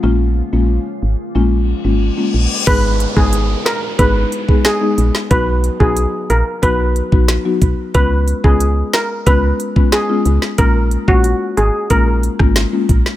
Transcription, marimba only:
X:1
M:4/4
L:1/16
Q:1/4=91
K:G#dor
V:1 name="Marimba"
[G,A,CE] z2 [G,A,CE] z4 [G,A,CE] z2 [G,A,CE] z [G,A,CE] z2 | [G,B,DG] z2 [G,B,DG] z4 [G,B,DG] z2 [G,B,DG] z [G,B,DG] z2 | [F,B,DF] z2 [F,B,DF] z4 [F,B,DF] z2 [F,B,DF] z [F,B,DF] z2 | [G,B,CE] z2 [G,B,CE] z4 [G,B,CE] z2 [G,B,CE] z [G,B,CE] z2 |
[G,A,CE] z2 [G,A,CE] z4 [G,A,CE] z2 [G,A,CE] z [G,A,CE] z2 |]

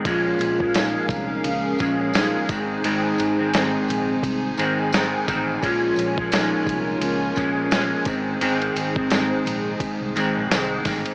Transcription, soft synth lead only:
X:1
M:4/4
L:1/8
Q:"Swing 16ths" 1/4=86
K:Abmix
V:1 name="Soft synth lead"
F2 E2 D2 E2 | E2 C4 z2 | F2 E2 D3 C- | C6 z2 |]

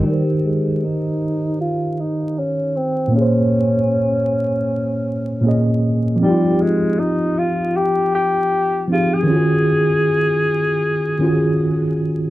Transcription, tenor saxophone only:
X:1
M:4/4
L:1/16
Q:"Swing 16ths" 1/4=78
K:Ebmix
V:1 name="Tenor saxophone"
G,2 A,2 E4 F2 E2 D2 C2 | D12- D2 z2 | G,2 A,2 E2 F2 G2 G4 F A- | A12- A2 z2 |]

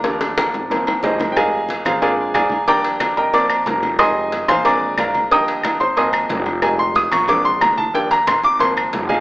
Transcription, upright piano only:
X:1
M:4/4
L:1/8
Q:1/4=182
K:Eb
V:1 name="Upright piano"
[Bdfb] z4 z [EAce]2 | [Aefga]3 [FAcf] [Adfa]2 [Adfa]2 | [dgbd']3 [Begb] [dd']2 [Bb]2 | [eac'e']3 [cfac'] [dabd']2 [Bdfb]2 |
[egbe']3 [cc'] [eac'e']2 z2 | a c' e' _d' =d' c' b =a | g b c' d' c' z2 [Aefa] |]
V:2 name="Upright piano" clef=bass
[F,G,D]4 [F,B,C]4 | [G,A,E] z3 [A,CD]3 z | [F,G,D]4 [F,B,C]3 z | [G,A,E]3 z [A,CD]4 |
[D,F,G,]3 z [F,B,C]3 z | [G,A,E]3 z [A,CD]3 z | [F,G,D] z3 [F,B,C]4 |]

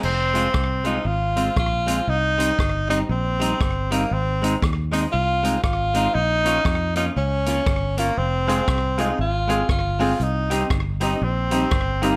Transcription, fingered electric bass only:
X:1
M:4/4
L:1/8
Q:"Swing" 1/4=118
K:Fm
V:1 name="Fingered electric bass" clef=bass
F,,,2 C,,2 A,,,2 B,,,2 | C,,2 G,,,2 B,,,2 G,,,2 | A,,,2 E,,2 C,,2 A,,,2 | B,,,2 F,,2 D,,2 G,,,2 |
F,,,2 C,,2 A,,,2 G,,,2 | C,,2 G,,,2 B,,,2 G,,,2 |]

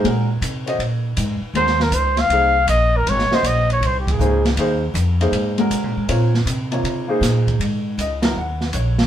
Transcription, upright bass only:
X:1
M:4/4
L:1/8
Q:"Swing" 1/4=159
K:Ebdor
V:1 name="Upright bass" clef=bass
B,,2 C,2 B,,2 A,, z | E,,2 D,,2 C,,2 B,,,2 | A,,, z B,,,2 C,,2 D,,2 | E,,2 F,,2 A,,2 (3D, B,, A,, |
B,,2 C,2 D,2 B,,2 | [K:G#m] G,,2 C,,2 D,,2 A,,,2 |]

